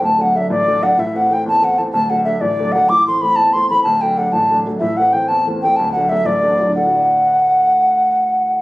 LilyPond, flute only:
\new Staff \with { instrumentName = "Flute" } { \time 6/8 \key d \mixolydian \tempo 4. = 125 a''8 fis''8 e''8 d''4 fis''8 | e''8 fis''8 g''8 a''8 fis''16. a''32 r8 | a''8 fis''8 e''8 d''4 fis''8 | d'''8 c'''8 b''8 a''8 c'''8 b''8 |
a''8 g''8 fis''8 a''4. | e''8 fis''8 g''8 a''8 r8 g''8 | a''8 fis''8 e''8 d''4. | fis''2.~ |
fis''2. | }